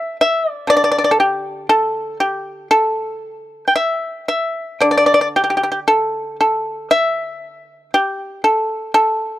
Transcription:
Already playing: E5
0.21 E5
0.50 D5
0.67 D3 D5
0.77 D5
0.84 D5
0.92 D5
0.98 D5
1.04 D5
1.11 A4
1.20 G4
1.69 A4
2.20 G4
2.71 A4
3.68 G5
3.76 E5
4.28 E5
4.80 D3 D5
4.91 D5
4.97 D5
5.06 D5
5.14 D5
5.21 D5
5.36 G4
5.44 G4
5.50 G4
5.57 G4
5.63 G4
5.72 G4
5.88 A4
6.41 A4
6.91 E5
7.94 G4
8.44 A4
8.94 A4

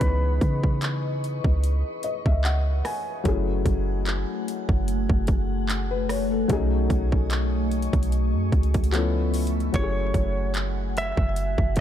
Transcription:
Already playing: E3 B3 C#4 D#4 G#4 B4 D#5 C#6, downlifter
0.01 C#2, kick, closed hi-hat
0.41 C#3, kick, closed hi-hat
0.63 kick
0.82 clap, closed hi-hat
1.24 closed hi-hat
1.44 C#2, kick
1.64 closed hi-hat
2.03 D#5, closed hi-hat
2.26 C#2 E5, kick
2.44 F#5, clap, closed hi-hat
2.85 G#5, cross-stick, open hi-hat
3.24 F#1 F#3 A3 C#4 E4 F#5 G#5, kick, closed hi-hat
3.28 G#4
3.65 F#1, kick, closed hi-hat
4.06 clap, closed hi-hat
4.48 closed hi-hat
4.69 F#1, kick
4.88 closed hi-hat
5.10 F#1, kick
5.27 kick, closed hi-hat
5.69 clap, closed hi-hat
5.91 B4
6.09 C#5, cross-stick, open hi-hat
6.32 A4
6.48 B1 F#3 A3 C#4 D#4 D#5 G#5 C#6, kick, closed hi-hat
6.53 G#4
6.90 B1, kick, closed hi-hat
7.12 kick
7.30 clap, closed hi-hat
7.71 closed hi-hat
7.82 closed hi-hat
7.93 B1, kick, closed hi-hat
8.03 closed hi-hat
8.12 closed hi-hat
8.34 F#2
8.52 C#2, kick, closed hi-hat
8.63 closed hi-hat
8.74 kick, closed hi-hat
8.84 closed hi-hat
8.92 F3 B3 C#4 E4 A4 E5 B5 C#6, clap, closed hi-hat
9.34 closed hi-hat, open hi-hat
9.47 closed hi-hat
9.60 closed hi-hat
9.72 F#1 F#3 A3 C#4 E4 C#5 F#5 G#5, kick, closed hi-hat
9.77 G4
9.84 G#4
10.14 F#1, kick, closed hi-hat
10.54 clap, closed hi-hat
10.97 E5, closed hi-hat
11.17 F#1, kick
11.36 closed hi-hat
11.58 F#1, kick
11.76 kick, closed hi-hat

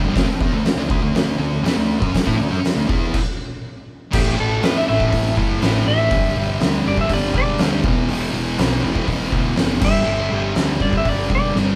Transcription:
0.02 G1 G2 D3
0.14 D2 D3 A3, kick, snare, open hi-hat
0.28 muted picked electric bass stroke, muted distorted electric guitar stroke
0.40 E2 E3 B3, kick
0.53 D2 D3 A3
0.64 muted picked electric bass stroke, muted distorted electric guitar stroke, snare, open hi-hat
0.76 D2 D3 A3
0.89 D2 D3 A3, kick
1.02 D2 D3 A3
1.14 D2 D3 A3, snare, open hi-hat
1.38 D2 D3 A3
1.63 E2 E3 B3, snare, open hi-hat
1.75 D2 D3 A3
1.99 F#2 F#3 C#4, kick
2.13 muted distorted electric guitar stroke, muted picked electric bass stroke, kick, snare, open hi-hat
2.25 A2 A3 E4, kick
2.37 D2 D3 A3
2.49 F#2 F#3 C#4
2.62 muted distorted electric guitar stroke, muted picked electric bass stroke, open hi-hat
2.66 snare
2.74 D2 D3 A3
2.87 E2 E3 B3 E4, kick
3.14 kick, crash
4.12 A1 A2 E3 A3 G4, kick, crash
4.37 A1 A2 E3 A3 A4
4.62 E2 A2 E3 A3 B4, snare, open hi-hat
4.78 E5
4.88 A1 A2 E3 A3 E5
5.00 kick
5.11 A1 A2 E3 A3, kick, open hi-hat
5.36 F#1 A2 E3 A3, kick
5.61 A1 A2 E3 A3, snare, open hi-hat
5.86 A1 A2 E3 A3 E5
6.11 G1 G2 D3 G3, kick, open hi-hat
6.36 G1 G2 D3 G3
6.60 D2 G2 D3 G3, snare, open hi-hat
6.85 G1 G2 D3 G3 D5
6.97 E5, kick
7.09 G1 G2 D3 G3, kick, open hi-hat
7.14 D5
7.33 E1 G2 D3 G3, kick
7.38 D5
7.58 D2 G2 D3 G3, snare, open hi-hat
7.84 E1 E2 B2 E3, kick
8.08 E1 E2 B2 E3, open hi-hat
8.34 E1 E2 B2 E3
8.58 B1 E2 B2 E3, snare, open hi-hat
8.82 E1 E2 B2 E3
8.96 kick
9.06 E1 E2 B2 E3, kick, open hi-hat
9.31 D2 E2 B2 E3, kick
9.56 F#1 E2 B2 E3, snare, open hi-hat
9.81 G1 G2 D3 G3 E5, kick, crash
10.04 G1 G2 D3 G3
10.30 G1 G2 D3 G3
10.54 D2 G2 D3 G3, snare, open hi-hat
10.80 G1 G2 D3 G3 D5, kick
10.93 kick
10.97 E5
11.04 G1 G2 D3 G3, kick, open hi-hat
11.09 D5
11.28 E1 G2 D3 G3, kick
11.35 D5
11.54 G1 G2 D3 G3, snare

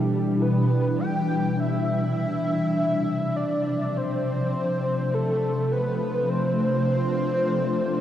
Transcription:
Already playing: B2 E3 G3 D4 E4 G4
0.41 B4
0.99 G5
1.59 C3 E5
2.75 F3
3.36 D5
3.97 C5
4.40 A3
5.14 A4
5.21 F4
5.72 B4
5.82 D4
6.29 C5

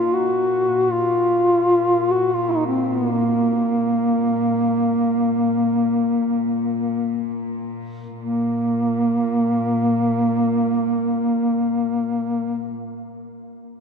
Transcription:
Already playing: A#2 F4
0.13 F#4
0.91 F4
2.11 F#4
2.34 F4
2.51 D#4
2.67 C4
2.85 B3
3.09 A#3
8.19 A#2 A#3

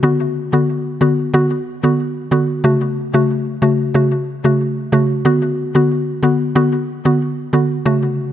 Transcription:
0.03 D3 B3 F#4
0.53 D3 B3 F#4
1.01 D3 B3 F#4
1.34 D3 B3 F#4
1.83 D3 B3 F#4
2.31 D3 B3 F#4
2.64 C#3 A3 F#4
3.14 C#3 A3 F#4
3.62 C#3 A3 F#4
3.94 C#3 A3 F#4
4.44 C#3 A3 F#4
4.92 C#3 A3 F#4
5.25 D3 B3 F#4
5.75 D3 B3 F#4
6.23 D3 B3 F#4
6.55 D3 B3 F#4
7.05 D3 B3 F#4
7.53 D3 B3 F#4
7.86 C#3 A3 F#4

